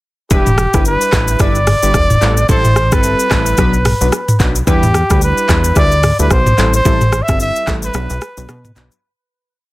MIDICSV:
0, 0, Header, 1, 5, 480
1, 0, Start_track
1, 0, Key_signature, 1, "minor"
1, 0, Tempo, 545455
1, 270, Time_signature, 4, 2, 24, 8
1, 8554, End_track
2, 0, Start_track
2, 0, Title_t, "Trumpet"
2, 0, Program_c, 0, 56
2, 281, Note_on_c, 0, 67, 98
2, 723, Note_off_c, 0, 67, 0
2, 761, Note_on_c, 0, 71, 96
2, 1203, Note_off_c, 0, 71, 0
2, 1242, Note_on_c, 0, 74, 118
2, 2161, Note_off_c, 0, 74, 0
2, 2200, Note_on_c, 0, 72, 105
2, 2581, Note_on_c, 0, 71, 100
2, 2594, Note_off_c, 0, 72, 0
2, 3876, Note_off_c, 0, 71, 0
2, 4120, Note_on_c, 0, 67, 90
2, 4562, Note_off_c, 0, 67, 0
2, 4601, Note_on_c, 0, 71, 93
2, 5043, Note_off_c, 0, 71, 0
2, 5080, Note_on_c, 0, 74, 105
2, 5428, Note_off_c, 0, 74, 0
2, 5459, Note_on_c, 0, 71, 98
2, 5561, Note_on_c, 0, 72, 100
2, 5574, Note_off_c, 0, 71, 0
2, 5935, Note_off_c, 0, 72, 0
2, 5938, Note_on_c, 0, 72, 100
2, 6360, Note_on_c, 0, 76, 107
2, 6373, Note_off_c, 0, 72, 0
2, 6515, Note_off_c, 0, 76, 0
2, 6519, Note_on_c, 0, 76, 107
2, 6813, Note_off_c, 0, 76, 0
2, 6901, Note_on_c, 0, 71, 91
2, 7681, Note_off_c, 0, 71, 0
2, 8554, End_track
3, 0, Start_track
3, 0, Title_t, "Synth keys"
3, 0, Program_c, 1, 88
3, 267, Note_on_c, 1, 55, 99
3, 269, Note_on_c, 1, 62, 90
3, 271, Note_on_c, 1, 64, 86
3, 273, Note_on_c, 1, 71, 107
3, 417, Note_off_c, 1, 55, 0
3, 418, Note_off_c, 1, 62, 0
3, 419, Note_off_c, 1, 64, 0
3, 420, Note_off_c, 1, 71, 0
3, 648, Note_on_c, 1, 55, 74
3, 649, Note_on_c, 1, 62, 65
3, 651, Note_on_c, 1, 64, 72
3, 653, Note_on_c, 1, 71, 83
3, 965, Note_off_c, 1, 55, 0
3, 966, Note_off_c, 1, 62, 0
3, 967, Note_off_c, 1, 64, 0
3, 968, Note_off_c, 1, 71, 0
3, 988, Note_on_c, 1, 55, 73
3, 990, Note_on_c, 1, 62, 70
3, 991, Note_on_c, 1, 64, 68
3, 993, Note_on_c, 1, 71, 85
3, 1213, Note_off_c, 1, 55, 0
3, 1214, Note_off_c, 1, 62, 0
3, 1215, Note_off_c, 1, 64, 0
3, 1216, Note_off_c, 1, 71, 0
3, 1229, Note_on_c, 1, 55, 88
3, 1230, Note_on_c, 1, 62, 88
3, 1232, Note_on_c, 1, 64, 83
3, 1234, Note_on_c, 1, 71, 104
3, 1377, Note_off_c, 1, 55, 0
3, 1378, Note_off_c, 1, 62, 0
3, 1379, Note_off_c, 1, 64, 0
3, 1380, Note_off_c, 1, 71, 0
3, 1608, Note_on_c, 1, 55, 75
3, 1610, Note_on_c, 1, 62, 71
3, 1611, Note_on_c, 1, 64, 70
3, 1614, Note_on_c, 1, 71, 80
3, 1721, Note_off_c, 1, 55, 0
3, 1723, Note_off_c, 1, 62, 0
3, 1723, Note_off_c, 1, 64, 0
3, 1724, Note_off_c, 1, 71, 0
3, 1947, Note_on_c, 1, 55, 76
3, 1948, Note_on_c, 1, 60, 69
3, 1951, Note_on_c, 1, 64, 68
3, 1952, Note_on_c, 1, 69, 83
3, 2097, Note_off_c, 1, 55, 0
3, 2097, Note_off_c, 1, 60, 0
3, 2098, Note_off_c, 1, 64, 0
3, 2099, Note_off_c, 1, 69, 0
3, 2187, Note_on_c, 1, 55, 91
3, 2188, Note_on_c, 1, 60, 86
3, 2190, Note_on_c, 1, 64, 89
3, 2192, Note_on_c, 1, 69, 107
3, 2336, Note_off_c, 1, 55, 0
3, 2337, Note_off_c, 1, 60, 0
3, 2338, Note_off_c, 1, 64, 0
3, 2339, Note_off_c, 1, 69, 0
3, 2567, Note_on_c, 1, 55, 77
3, 2568, Note_on_c, 1, 60, 70
3, 2570, Note_on_c, 1, 64, 69
3, 2572, Note_on_c, 1, 69, 85
3, 2885, Note_off_c, 1, 55, 0
3, 2886, Note_off_c, 1, 60, 0
3, 2886, Note_off_c, 1, 64, 0
3, 2887, Note_off_c, 1, 69, 0
3, 2909, Note_on_c, 1, 55, 77
3, 2910, Note_on_c, 1, 60, 72
3, 2912, Note_on_c, 1, 64, 70
3, 2914, Note_on_c, 1, 69, 84
3, 3134, Note_off_c, 1, 55, 0
3, 3134, Note_off_c, 1, 60, 0
3, 3135, Note_off_c, 1, 64, 0
3, 3136, Note_off_c, 1, 69, 0
3, 3148, Note_on_c, 1, 54, 93
3, 3150, Note_on_c, 1, 59, 84
3, 3152, Note_on_c, 1, 62, 89
3, 3153, Note_on_c, 1, 71, 106
3, 3297, Note_off_c, 1, 54, 0
3, 3298, Note_off_c, 1, 59, 0
3, 3299, Note_off_c, 1, 62, 0
3, 3300, Note_off_c, 1, 71, 0
3, 3527, Note_on_c, 1, 54, 77
3, 3529, Note_on_c, 1, 59, 74
3, 3531, Note_on_c, 1, 62, 72
3, 3532, Note_on_c, 1, 71, 81
3, 3641, Note_off_c, 1, 54, 0
3, 3642, Note_off_c, 1, 59, 0
3, 3643, Note_off_c, 1, 62, 0
3, 3644, Note_off_c, 1, 71, 0
3, 3868, Note_on_c, 1, 54, 75
3, 3870, Note_on_c, 1, 59, 67
3, 3872, Note_on_c, 1, 62, 72
3, 3874, Note_on_c, 1, 71, 87
3, 4017, Note_off_c, 1, 54, 0
3, 4018, Note_off_c, 1, 59, 0
3, 4019, Note_off_c, 1, 62, 0
3, 4020, Note_off_c, 1, 71, 0
3, 4108, Note_on_c, 1, 55, 93
3, 4110, Note_on_c, 1, 62, 86
3, 4111, Note_on_c, 1, 64, 88
3, 4114, Note_on_c, 1, 71, 106
3, 4257, Note_off_c, 1, 55, 0
3, 4258, Note_off_c, 1, 62, 0
3, 4259, Note_off_c, 1, 64, 0
3, 4260, Note_off_c, 1, 71, 0
3, 4488, Note_on_c, 1, 55, 79
3, 4490, Note_on_c, 1, 62, 72
3, 4492, Note_on_c, 1, 64, 67
3, 4493, Note_on_c, 1, 71, 84
3, 4805, Note_off_c, 1, 55, 0
3, 4806, Note_off_c, 1, 62, 0
3, 4807, Note_off_c, 1, 64, 0
3, 4808, Note_off_c, 1, 71, 0
3, 4828, Note_on_c, 1, 55, 74
3, 4830, Note_on_c, 1, 62, 72
3, 4832, Note_on_c, 1, 64, 73
3, 4834, Note_on_c, 1, 71, 85
3, 5053, Note_off_c, 1, 55, 0
3, 5054, Note_off_c, 1, 62, 0
3, 5055, Note_off_c, 1, 64, 0
3, 5056, Note_off_c, 1, 71, 0
3, 5069, Note_on_c, 1, 55, 92
3, 5070, Note_on_c, 1, 62, 86
3, 5072, Note_on_c, 1, 64, 87
3, 5074, Note_on_c, 1, 71, 103
3, 5218, Note_off_c, 1, 55, 0
3, 5218, Note_off_c, 1, 62, 0
3, 5219, Note_off_c, 1, 64, 0
3, 5220, Note_off_c, 1, 71, 0
3, 5449, Note_on_c, 1, 55, 81
3, 5450, Note_on_c, 1, 62, 69
3, 5452, Note_on_c, 1, 64, 71
3, 5454, Note_on_c, 1, 71, 82
3, 5562, Note_off_c, 1, 55, 0
3, 5563, Note_off_c, 1, 62, 0
3, 5564, Note_off_c, 1, 64, 0
3, 5564, Note_off_c, 1, 71, 0
3, 5789, Note_on_c, 1, 55, 79
3, 5791, Note_on_c, 1, 60, 73
3, 5793, Note_on_c, 1, 64, 68
3, 5795, Note_on_c, 1, 69, 84
3, 5938, Note_off_c, 1, 55, 0
3, 5939, Note_off_c, 1, 60, 0
3, 5939, Note_off_c, 1, 64, 0
3, 5940, Note_off_c, 1, 69, 0
3, 6029, Note_on_c, 1, 55, 97
3, 6030, Note_on_c, 1, 60, 84
3, 6032, Note_on_c, 1, 64, 89
3, 6034, Note_on_c, 1, 69, 100
3, 6178, Note_off_c, 1, 55, 0
3, 6178, Note_off_c, 1, 60, 0
3, 6179, Note_off_c, 1, 64, 0
3, 6180, Note_off_c, 1, 69, 0
3, 6408, Note_on_c, 1, 55, 73
3, 6410, Note_on_c, 1, 60, 70
3, 6411, Note_on_c, 1, 64, 69
3, 6413, Note_on_c, 1, 69, 82
3, 6725, Note_off_c, 1, 55, 0
3, 6726, Note_off_c, 1, 60, 0
3, 6727, Note_off_c, 1, 64, 0
3, 6728, Note_off_c, 1, 69, 0
3, 6749, Note_on_c, 1, 55, 80
3, 6751, Note_on_c, 1, 60, 69
3, 6752, Note_on_c, 1, 64, 70
3, 6754, Note_on_c, 1, 69, 82
3, 6974, Note_off_c, 1, 55, 0
3, 6974, Note_off_c, 1, 60, 0
3, 6975, Note_off_c, 1, 64, 0
3, 6976, Note_off_c, 1, 69, 0
3, 6990, Note_on_c, 1, 54, 90
3, 6992, Note_on_c, 1, 59, 88
3, 6994, Note_on_c, 1, 62, 83
3, 6995, Note_on_c, 1, 71, 102
3, 7138, Note_off_c, 1, 54, 0
3, 7139, Note_off_c, 1, 59, 0
3, 7140, Note_off_c, 1, 62, 0
3, 7141, Note_off_c, 1, 71, 0
3, 7368, Note_on_c, 1, 54, 76
3, 7370, Note_on_c, 1, 59, 71
3, 7372, Note_on_c, 1, 62, 72
3, 7374, Note_on_c, 1, 71, 87
3, 7482, Note_off_c, 1, 54, 0
3, 7483, Note_off_c, 1, 59, 0
3, 7483, Note_off_c, 1, 62, 0
3, 7485, Note_off_c, 1, 71, 0
3, 7709, Note_on_c, 1, 54, 74
3, 7711, Note_on_c, 1, 59, 70
3, 7713, Note_on_c, 1, 62, 69
3, 7714, Note_on_c, 1, 71, 88
3, 7858, Note_off_c, 1, 54, 0
3, 7859, Note_off_c, 1, 59, 0
3, 7860, Note_off_c, 1, 62, 0
3, 7860, Note_off_c, 1, 71, 0
3, 8554, End_track
4, 0, Start_track
4, 0, Title_t, "Analog synth bass"
4, 0, Program_c, 2, 38
4, 271, Note_on_c, 2, 28, 127
4, 592, Note_off_c, 2, 28, 0
4, 651, Note_on_c, 2, 31, 100
4, 854, Note_off_c, 2, 31, 0
4, 991, Note_on_c, 2, 33, 99
4, 1194, Note_off_c, 2, 33, 0
4, 1229, Note_on_c, 2, 31, 96
4, 1551, Note_off_c, 2, 31, 0
4, 1610, Note_on_c, 2, 31, 96
4, 1695, Note_off_c, 2, 31, 0
4, 1709, Note_on_c, 2, 28, 102
4, 1913, Note_off_c, 2, 28, 0
4, 1951, Note_on_c, 2, 33, 105
4, 2154, Note_off_c, 2, 33, 0
4, 2191, Note_on_c, 2, 33, 121
4, 2571, Note_on_c, 2, 31, 93
4, 2585, Note_off_c, 2, 33, 0
4, 2774, Note_off_c, 2, 31, 0
4, 2913, Note_on_c, 2, 33, 91
4, 3115, Note_off_c, 2, 33, 0
4, 3149, Note_on_c, 2, 35, 100
4, 3471, Note_off_c, 2, 35, 0
4, 3530, Note_on_c, 2, 35, 86
4, 3615, Note_off_c, 2, 35, 0
4, 3871, Note_on_c, 2, 35, 94
4, 4074, Note_off_c, 2, 35, 0
4, 4111, Note_on_c, 2, 40, 113
4, 4432, Note_off_c, 2, 40, 0
4, 4492, Note_on_c, 2, 38, 92
4, 4694, Note_off_c, 2, 38, 0
4, 4832, Note_on_c, 2, 40, 103
4, 5035, Note_off_c, 2, 40, 0
4, 5069, Note_on_c, 2, 38, 87
4, 5391, Note_off_c, 2, 38, 0
4, 5450, Note_on_c, 2, 38, 85
4, 5535, Note_off_c, 2, 38, 0
4, 5549, Note_on_c, 2, 35, 99
4, 5753, Note_off_c, 2, 35, 0
4, 5791, Note_on_c, 2, 33, 98
4, 5994, Note_off_c, 2, 33, 0
4, 6031, Note_on_c, 2, 33, 120
4, 6352, Note_off_c, 2, 33, 0
4, 6412, Note_on_c, 2, 31, 87
4, 6614, Note_off_c, 2, 31, 0
4, 6752, Note_on_c, 2, 33, 88
4, 6955, Note_off_c, 2, 33, 0
4, 6991, Note_on_c, 2, 35, 103
4, 7108, Note_off_c, 2, 35, 0
4, 7130, Note_on_c, 2, 35, 90
4, 7215, Note_off_c, 2, 35, 0
4, 7370, Note_on_c, 2, 35, 89
4, 7455, Note_off_c, 2, 35, 0
4, 7471, Note_on_c, 2, 47, 103
4, 7674, Note_off_c, 2, 47, 0
4, 7710, Note_on_c, 2, 35, 97
4, 7828, Note_off_c, 2, 35, 0
4, 8554, End_track
5, 0, Start_track
5, 0, Title_t, "Drums"
5, 270, Note_on_c, 9, 82, 96
5, 271, Note_on_c, 9, 36, 112
5, 358, Note_off_c, 9, 82, 0
5, 359, Note_off_c, 9, 36, 0
5, 410, Note_on_c, 9, 82, 55
5, 412, Note_on_c, 9, 45, 104
5, 498, Note_off_c, 9, 82, 0
5, 500, Note_off_c, 9, 45, 0
5, 509, Note_on_c, 9, 37, 97
5, 510, Note_on_c, 9, 82, 58
5, 597, Note_off_c, 9, 37, 0
5, 598, Note_off_c, 9, 82, 0
5, 648, Note_on_c, 9, 82, 88
5, 651, Note_on_c, 9, 36, 97
5, 654, Note_on_c, 9, 37, 97
5, 736, Note_off_c, 9, 82, 0
5, 739, Note_off_c, 9, 36, 0
5, 742, Note_off_c, 9, 37, 0
5, 749, Note_on_c, 9, 82, 85
5, 837, Note_off_c, 9, 82, 0
5, 890, Note_on_c, 9, 82, 59
5, 978, Note_off_c, 9, 82, 0
5, 990, Note_on_c, 9, 37, 100
5, 990, Note_on_c, 9, 39, 110
5, 991, Note_on_c, 9, 82, 61
5, 992, Note_on_c, 9, 36, 91
5, 1078, Note_off_c, 9, 37, 0
5, 1078, Note_off_c, 9, 39, 0
5, 1079, Note_off_c, 9, 82, 0
5, 1080, Note_off_c, 9, 36, 0
5, 1125, Note_on_c, 9, 82, 106
5, 1213, Note_off_c, 9, 82, 0
5, 1225, Note_on_c, 9, 82, 86
5, 1228, Note_on_c, 9, 36, 90
5, 1233, Note_on_c, 9, 37, 99
5, 1313, Note_off_c, 9, 82, 0
5, 1316, Note_off_c, 9, 36, 0
5, 1321, Note_off_c, 9, 37, 0
5, 1365, Note_on_c, 9, 82, 50
5, 1453, Note_off_c, 9, 82, 0
5, 1469, Note_on_c, 9, 46, 55
5, 1469, Note_on_c, 9, 82, 53
5, 1471, Note_on_c, 9, 37, 100
5, 1472, Note_on_c, 9, 45, 62
5, 1557, Note_off_c, 9, 46, 0
5, 1557, Note_off_c, 9, 82, 0
5, 1559, Note_off_c, 9, 37, 0
5, 1560, Note_off_c, 9, 45, 0
5, 1609, Note_on_c, 9, 82, 103
5, 1697, Note_off_c, 9, 82, 0
5, 1708, Note_on_c, 9, 37, 102
5, 1709, Note_on_c, 9, 36, 103
5, 1709, Note_on_c, 9, 82, 79
5, 1796, Note_off_c, 9, 37, 0
5, 1797, Note_off_c, 9, 36, 0
5, 1797, Note_off_c, 9, 82, 0
5, 1849, Note_on_c, 9, 45, 99
5, 1850, Note_on_c, 9, 82, 59
5, 1937, Note_off_c, 9, 45, 0
5, 1938, Note_off_c, 9, 82, 0
5, 1950, Note_on_c, 9, 82, 55
5, 1953, Note_on_c, 9, 39, 84
5, 2038, Note_off_c, 9, 82, 0
5, 2041, Note_off_c, 9, 39, 0
5, 2087, Note_on_c, 9, 82, 93
5, 2175, Note_off_c, 9, 82, 0
5, 2190, Note_on_c, 9, 82, 90
5, 2191, Note_on_c, 9, 36, 118
5, 2278, Note_off_c, 9, 82, 0
5, 2279, Note_off_c, 9, 36, 0
5, 2329, Note_on_c, 9, 82, 56
5, 2331, Note_on_c, 9, 45, 98
5, 2417, Note_off_c, 9, 82, 0
5, 2419, Note_off_c, 9, 45, 0
5, 2429, Note_on_c, 9, 37, 96
5, 2430, Note_on_c, 9, 82, 57
5, 2517, Note_off_c, 9, 37, 0
5, 2518, Note_off_c, 9, 82, 0
5, 2569, Note_on_c, 9, 82, 92
5, 2572, Note_on_c, 9, 36, 90
5, 2574, Note_on_c, 9, 37, 97
5, 2657, Note_off_c, 9, 82, 0
5, 2660, Note_off_c, 9, 36, 0
5, 2662, Note_off_c, 9, 37, 0
5, 2669, Note_on_c, 9, 82, 84
5, 2757, Note_off_c, 9, 82, 0
5, 2811, Note_on_c, 9, 82, 59
5, 2899, Note_off_c, 9, 82, 0
5, 2912, Note_on_c, 9, 36, 91
5, 2912, Note_on_c, 9, 37, 108
5, 2912, Note_on_c, 9, 39, 104
5, 2913, Note_on_c, 9, 82, 64
5, 3000, Note_off_c, 9, 36, 0
5, 3000, Note_off_c, 9, 37, 0
5, 3000, Note_off_c, 9, 39, 0
5, 3001, Note_off_c, 9, 82, 0
5, 3046, Note_on_c, 9, 82, 105
5, 3134, Note_off_c, 9, 82, 0
5, 3146, Note_on_c, 9, 82, 85
5, 3149, Note_on_c, 9, 36, 91
5, 3154, Note_on_c, 9, 37, 102
5, 3234, Note_off_c, 9, 82, 0
5, 3237, Note_off_c, 9, 36, 0
5, 3242, Note_off_c, 9, 37, 0
5, 3287, Note_on_c, 9, 82, 50
5, 3375, Note_off_c, 9, 82, 0
5, 3389, Note_on_c, 9, 46, 58
5, 3389, Note_on_c, 9, 82, 53
5, 3392, Note_on_c, 9, 37, 101
5, 3393, Note_on_c, 9, 45, 63
5, 3477, Note_off_c, 9, 46, 0
5, 3477, Note_off_c, 9, 82, 0
5, 3480, Note_off_c, 9, 37, 0
5, 3481, Note_off_c, 9, 45, 0
5, 3530, Note_on_c, 9, 82, 98
5, 3618, Note_off_c, 9, 82, 0
5, 3629, Note_on_c, 9, 37, 97
5, 3629, Note_on_c, 9, 82, 76
5, 3717, Note_off_c, 9, 37, 0
5, 3717, Note_off_c, 9, 82, 0
5, 3770, Note_on_c, 9, 45, 93
5, 3771, Note_on_c, 9, 82, 60
5, 3858, Note_off_c, 9, 45, 0
5, 3859, Note_off_c, 9, 82, 0
5, 3871, Note_on_c, 9, 36, 96
5, 3871, Note_on_c, 9, 82, 55
5, 3874, Note_on_c, 9, 39, 84
5, 3959, Note_off_c, 9, 36, 0
5, 3959, Note_off_c, 9, 82, 0
5, 3962, Note_off_c, 9, 39, 0
5, 4008, Note_on_c, 9, 82, 93
5, 4096, Note_off_c, 9, 82, 0
5, 4111, Note_on_c, 9, 36, 117
5, 4111, Note_on_c, 9, 82, 90
5, 4199, Note_off_c, 9, 36, 0
5, 4199, Note_off_c, 9, 82, 0
5, 4251, Note_on_c, 9, 82, 56
5, 4253, Note_on_c, 9, 45, 106
5, 4339, Note_off_c, 9, 82, 0
5, 4341, Note_off_c, 9, 45, 0
5, 4350, Note_on_c, 9, 37, 102
5, 4351, Note_on_c, 9, 82, 58
5, 4438, Note_off_c, 9, 37, 0
5, 4439, Note_off_c, 9, 82, 0
5, 4489, Note_on_c, 9, 82, 86
5, 4492, Note_on_c, 9, 36, 97
5, 4495, Note_on_c, 9, 37, 99
5, 4577, Note_off_c, 9, 82, 0
5, 4580, Note_off_c, 9, 36, 0
5, 4583, Note_off_c, 9, 37, 0
5, 4590, Note_on_c, 9, 82, 85
5, 4678, Note_off_c, 9, 82, 0
5, 4731, Note_on_c, 9, 82, 59
5, 4819, Note_off_c, 9, 82, 0
5, 4832, Note_on_c, 9, 36, 89
5, 4832, Note_on_c, 9, 37, 103
5, 4832, Note_on_c, 9, 39, 105
5, 4833, Note_on_c, 9, 82, 64
5, 4920, Note_off_c, 9, 36, 0
5, 4920, Note_off_c, 9, 37, 0
5, 4920, Note_off_c, 9, 39, 0
5, 4921, Note_off_c, 9, 82, 0
5, 4966, Note_on_c, 9, 82, 107
5, 5054, Note_off_c, 9, 82, 0
5, 5066, Note_on_c, 9, 82, 86
5, 5069, Note_on_c, 9, 36, 96
5, 5074, Note_on_c, 9, 37, 94
5, 5154, Note_off_c, 9, 82, 0
5, 5157, Note_off_c, 9, 36, 0
5, 5162, Note_off_c, 9, 37, 0
5, 5206, Note_on_c, 9, 82, 50
5, 5294, Note_off_c, 9, 82, 0
5, 5309, Note_on_c, 9, 46, 55
5, 5309, Note_on_c, 9, 82, 57
5, 5311, Note_on_c, 9, 37, 96
5, 5312, Note_on_c, 9, 45, 61
5, 5397, Note_off_c, 9, 46, 0
5, 5397, Note_off_c, 9, 82, 0
5, 5399, Note_off_c, 9, 37, 0
5, 5400, Note_off_c, 9, 45, 0
5, 5450, Note_on_c, 9, 82, 98
5, 5538, Note_off_c, 9, 82, 0
5, 5549, Note_on_c, 9, 36, 108
5, 5549, Note_on_c, 9, 37, 105
5, 5549, Note_on_c, 9, 82, 80
5, 5637, Note_off_c, 9, 36, 0
5, 5637, Note_off_c, 9, 37, 0
5, 5637, Note_off_c, 9, 82, 0
5, 5689, Note_on_c, 9, 45, 94
5, 5691, Note_on_c, 9, 82, 60
5, 5777, Note_off_c, 9, 45, 0
5, 5779, Note_off_c, 9, 82, 0
5, 5790, Note_on_c, 9, 82, 54
5, 5793, Note_on_c, 9, 39, 87
5, 5878, Note_off_c, 9, 82, 0
5, 5881, Note_off_c, 9, 39, 0
5, 5927, Note_on_c, 9, 82, 93
5, 6015, Note_off_c, 9, 82, 0
5, 6031, Note_on_c, 9, 36, 117
5, 6031, Note_on_c, 9, 82, 88
5, 6119, Note_off_c, 9, 36, 0
5, 6119, Note_off_c, 9, 82, 0
5, 6170, Note_on_c, 9, 82, 56
5, 6172, Note_on_c, 9, 45, 104
5, 6258, Note_off_c, 9, 82, 0
5, 6260, Note_off_c, 9, 45, 0
5, 6269, Note_on_c, 9, 37, 100
5, 6271, Note_on_c, 9, 82, 57
5, 6357, Note_off_c, 9, 37, 0
5, 6359, Note_off_c, 9, 82, 0
5, 6409, Note_on_c, 9, 82, 93
5, 6412, Note_on_c, 9, 36, 96
5, 6414, Note_on_c, 9, 37, 101
5, 6497, Note_off_c, 9, 82, 0
5, 6500, Note_off_c, 9, 36, 0
5, 6502, Note_off_c, 9, 37, 0
5, 6510, Note_on_c, 9, 82, 81
5, 6598, Note_off_c, 9, 82, 0
5, 6652, Note_on_c, 9, 82, 60
5, 6740, Note_off_c, 9, 82, 0
5, 6753, Note_on_c, 9, 36, 92
5, 6753, Note_on_c, 9, 37, 107
5, 6753, Note_on_c, 9, 39, 102
5, 6753, Note_on_c, 9, 82, 63
5, 6841, Note_off_c, 9, 36, 0
5, 6841, Note_off_c, 9, 37, 0
5, 6841, Note_off_c, 9, 39, 0
5, 6841, Note_off_c, 9, 82, 0
5, 6886, Note_on_c, 9, 82, 111
5, 6974, Note_off_c, 9, 82, 0
5, 6986, Note_on_c, 9, 82, 83
5, 6994, Note_on_c, 9, 37, 100
5, 7074, Note_off_c, 9, 82, 0
5, 7082, Note_off_c, 9, 37, 0
5, 7126, Note_on_c, 9, 82, 54
5, 7214, Note_off_c, 9, 82, 0
5, 7229, Note_on_c, 9, 82, 54
5, 7231, Note_on_c, 9, 37, 101
5, 7317, Note_off_c, 9, 82, 0
5, 7319, Note_off_c, 9, 37, 0
5, 7369, Note_on_c, 9, 82, 101
5, 7457, Note_off_c, 9, 82, 0
5, 7469, Note_on_c, 9, 37, 101
5, 7469, Note_on_c, 9, 82, 80
5, 7557, Note_off_c, 9, 37, 0
5, 7557, Note_off_c, 9, 82, 0
5, 7609, Note_on_c, 9, 45, 91
5, 7611, Note_on_c, 9, 82, 60
5, 7697, Note_off_c, 9, 45, 0
5, 7699, Note_off_c, 9, 82, 0
5, 7711, Note_on_c, 9, 82, 56
5, 7713, Note_on_c, 9, 39, 86
5, 7799, Note_off_c, 9, 82, 0
5, 7801, Note_off_c, 9, 39, 0
5, 7847, Note_on_c, 9, 82, 95
5, 7935, Note_off_c, 9, 82, 0
5, 8554, End_track
0, 0, End_of_file